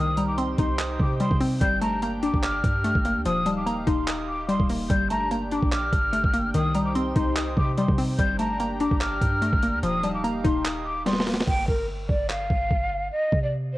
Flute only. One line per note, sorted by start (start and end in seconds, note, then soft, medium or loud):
0.00 0.26 D#6 loud
0.28 0.37 D6 medium
0.58 0.77 C6 medium
1.00 1.18 D6 medium
1.20 1.38 C6 medium
1.61 1.79 G6 loud
1.82 2.00 A#5 medium
2.23 2.41 D6 medium
2.43 3.21 F6 loud
3.26 3.55 D#6 loud
3.57 3.66 D6 medium
3.87 4.05 C6 medium
4.28 4.46 D6 medium
4.49 4.67 C6 medium
4.90 5.08 G6 medium
5.10 5.29 A#5 medium
5.52 5.70 D6 medium
5.72 6.50 F6 loud
6.54 6.84 D#6 loud
6.86 6.94 D6 medium
7.16 7.34 C6 medium
7.57 7.75 D6 medium
7.77 7.96 C6 medium
8.19 8.37 G6 loud
8.39 8.58 A#5 medium
8.80 8.99 D6 medium
9.01 9.79 F6 loud
9.83 10.13 D#6 loud
10.15 10.23 D6 medium
10.45 10.63 C6 medium
10.86 11.04 D6 medium
11.06 11.25 C6 medium
11.48 11.66 G5 medium
11.68 11.86 A#4 medium
12.09 12.27 D5 medium
12.30 13.08 F5 medium
13.12 13.41 D#5 loud
13.43 13.52 D5 medium
13.74 13.78 C5 medium